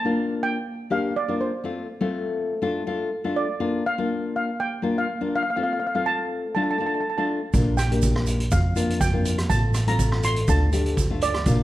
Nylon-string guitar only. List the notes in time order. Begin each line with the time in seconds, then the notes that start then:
0.04 A#3 D4 F4
0.90 A#3 D4 G4
1.28 A#3 D4 F4
1.64 A3 C4 F4
2.01 A3 C4 F4
2.62 A3 D4 F4
2.87 A3 D4 F4
3.24 A3 D4 F4
3.60 A#3 D4 F4
3.98 A#3 D4 F4
4.82 A#3 D4 F4
5.21 A#3 D4 F4
5.56 A3 C4 F4
5.95 A3 C4 F4
6.56 A3 D4 F4
6.80 A3 D4 F4
7.18 A3 D4 F4
7.53 A#3 D4 F4
7.91 A#3 D4 G4
8.76 A#3 D4 F4
9.13 A#3 D4 F4
9.49 A3 C4 F4
9.87 A3 C4 F4
10.48 A3 D4 F4
10.73 A3 D4 G4
11.10 A3 D4 F4
11.47 A#3 D4 F4